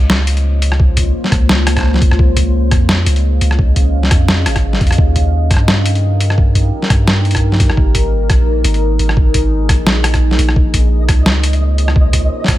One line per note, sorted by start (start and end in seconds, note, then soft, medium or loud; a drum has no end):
0.00 1.13 C#2 loud
0.00 2.16 A#3 medium
0.00 2.16 F4 medium
0.00 2.16 C5 medium
0.00 2.16 C#5 medium
0.10 snare loud
0.27 closed hi-hat medium
0.37 closed hi-hat soft
0.62 closed hi-hat medium
0.72 cross-stick medium
0.80 kick loud
0.97 kick medium
0.97 closed hi-hat medium
1.24 snare soft
1.32 2.10 C#2 loud
1.32 kick loud
1.32 cross-stick medium
1.32 closed hi-hat medium
1.49 snare loud
1.67 cross-stick medium
1.67 closed hi-hat medium
1.77 kick medium
1.77 cross-stick medium
1.77 closed hi-hat soft
1.79 cross-stick soft
1.81 cross-stick soft
1.83 cross-stick soft
1.86 cross-stick soft
1.89 cross-stick soft
1.91 cross-stick soft
1.91 snare soft
1.96 snare soft
1.99 kick loud
1.99 snare soft
1.99 closed hi-hat medium
2.11 2.73 C#2 loud
2.11 cross-stick medium
2.19 4.95 C#4 medium
2.19 4.95 G#4 medium
2.19 4.95 D#5 medium
2.19 4.95 F5 medium
2.19 kick loud
2.37 kick medium
2.37 closed hi-hat medium
2.71 3.05 F2 loud
2.71 kick loud
2.71 cross-stick medium
2.71 closed hi-hat medium
2.89 snare loud
3.06 3.40 C#2 loud
3.06 closed hi-hat medium
3.16 closed hi-hat soft
3.41 4.13 C#2 medium
3.41 closed hi-hat medium
3.51 cross-stick medium
3.59 kick loud
3.76 kick medium
3.76 closed hi-hat medium
4.03 snare soft
4.11 4.48 F2 loud
4.11 kick loud
4.11 cross-stick medium
4.11 closed hi-hat medium
4.28 snare loud
4.46 4.82 G#1 medium
4.46 cross-stick medium
4.46 closed hi-hat medium
4.56 kick medium
4.56 cross-stick soft
4.56 closed hi-hat soft
4.73 snare soft
4.81 4.97 F2 loud
4.81 kick loud
4.81 closed hi-hat soft
4.87 cross-stick soft
4.87 closed hi-hat soft
4.92 closed hi-hat medium
4.98 5.52 D#2 loud
4.98 7.75 D#4 medium
4.98 7.75 G4 medium
4.98 10.52 A#4 medium
4.98 kick loud
5.16 kick medium
5.16 closed hi-hat medium
5.51 6.72 G2 loud
5.51 kick loud
5.51 cross-stick soft
5.51 closed hi-hat medium
5.54 cross-stick soft
5.57 cross-stick soft
5.68 snare loud
5.86 closed hi-hat medium
5.95 closed hi-hat soft
6.20 closed hi-hat medium
6.30 cross-stick soft
6.38 kick loud
6.55 kick medium
6.55 closed hi-hat medium
6.82 snare soft
6.90 7.71 G2 loud
6.90 kick loud
6.90 cross-stick medium
6.90 closed hi-hat medium
7.08 snare loud
7.25 closed hi-hat soft
7.31 cross-stick medium
7.31 closed hi-hat soft
7.35 kick medium
7.35 closed hi-hat soft
7.37 closed hi-hat medium
7.52 snare soft
7.54 snare soft
7.57 snare soft
7.59 kick loud
7.59 snare soft
7.59 closed hi-hat medium
7.61 snare soft
7.64 snare soft
7.67 8.31 G#1 loud
7.67 cross-stick medium
7.67 snare soft
7.77 10.54 D#4 medium
7.77 10.54 G#4 medium
7.77 kick loud
7.95 kick medium
7.95 closed hi-hat medium
8.30 8.64 A#1 loud
8.30 kick loud
8.30 cross-stick medium
8.30 closed hi-hat medium
8.64 8.98 G#1 loud
8.64 closed hi-hat medium
8.74 closed hi-hat soft
8.99 9.71 G#1 medium
8.99 closed hi-hat medium
9.09 cross-stick medium
9.17 kick loud
9.34 kick medium
9.34 closed hi-hat medium
9.69 10.38 A#1 loud
9.69 kick loud
9.69 cross-stick medium
9.69 closed hi-hat medium
9.87 snare loud
10.04 cross-stick medium
10.04 closed hi-hat medium
10.14 kick medium
10.14 cross-stick medium
10.14 closed hi-hat soft
10.31 snare soft
10.39 10.55 A#1 medium
10.39 closed hi-hat medium
10.49 cross-stick medium
10.56 11.10 A#1 loud
10.56 12.58 A#3 medium
10.56 12.58 F4 medium
10.56 12.58 C5 medium
10.56 12.58 C#5 medium
10.56 12.58 D#5 medium
10.56 kick loud
10.74 kick medium
10.74 closed hi-hat medium
11.09 12.30 C#2 loud
11.09 kick loud
11.09 cross-stick medium
11.09 closed hi-hat medium
11.26 snare loud
11.43 closed hi-hat medium
11.53 closed hi-hat soft
11.78 closed hi-hat medium
11.88 cross-stick medium
11.96 kick loud
12.13 kick medium
12.13 closed hi-hat medium
12.44 12.58 C#2 loud
12.44 kick loud
12.44 cross-stick medium
12.44 snare soft
12.44 closed hi-hat medium